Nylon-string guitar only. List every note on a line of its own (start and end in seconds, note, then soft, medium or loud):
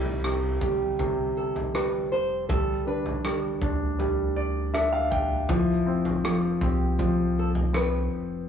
0.00 0.58 E4 medium
0.62 1.39 G4 medium
1.37 1.74 A4 medium
1.75 2.11 B4 medium
2.12 2.47 C5 medium
2.49 2.87 A4 medium
2.87 5.08 B4 medium
5.51 6.21 E4 medium
6.64 7.34 G4 medium
7.39 7.49 A4 medium
7.76 8.46 B4 medium